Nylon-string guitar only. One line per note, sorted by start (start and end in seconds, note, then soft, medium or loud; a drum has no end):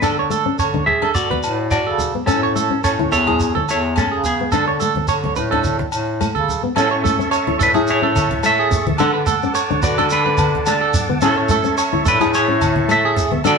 0.02 0.21 D4 medium
0.30 0.40 A3 medium
0.46 0.64 C#4 medium
0.74 0.93 D4 medium
1.02 1.21 D4 medium
1.30 1.49 B3 medium
2.15 2.23 B3 medium
2.27 2.46 C#4 medium
2.56 2.66 A3 medium
2.71 2.89 C#4 medium
2.99 3.18 E4 medium
3.28 3.46 E4 medium
3.56 muted nylon-string guitar stroke medium
3.97 4.15 A3 medium
4.41 4.49 B3 medium
4.53 4.71 D4 medium
4.82 4.91 A3 medium
4.97 muted nylon-string guitar stroke medium
5.25 muted nylon-string guitar stroke medium
5.53 5.71 D4 medium
6.21 6.39 A3 medium
6.63 6.72 B3 medium
6.77 6.95 C#4 medium
7.05 7.14 A3 medium
7.19 7.37 C#4 medium
7.47 7.65 E4 medium
7.75 7.93 E4 medium
8.02 8.21 C#4 medium
8.44 8.62 A3 medium
8.87 8.95 E3 medium
9.00 9.18 D4 medium
9.28 9.37 A3 medium
9.43 9.61 C#4 medium
9.71 9.89 D4 medium
9.99 10.16 D4 medium
10.26 10.44 D4 medium
10.67 10.85 A3 medium
11.09 11.18 B3 medium
11.22 11.40 C#4 medium
11.50 11.60 A3 medium
11.64 11.83 C#4 medium
11.93 12.11 E4 medium
12.21 12.39 E4 medium
12.48 12.67 C#4 medium
12.89 13.07 A3 medium
13.32 13.40 B3 medium
13.45 13.58 D4 medium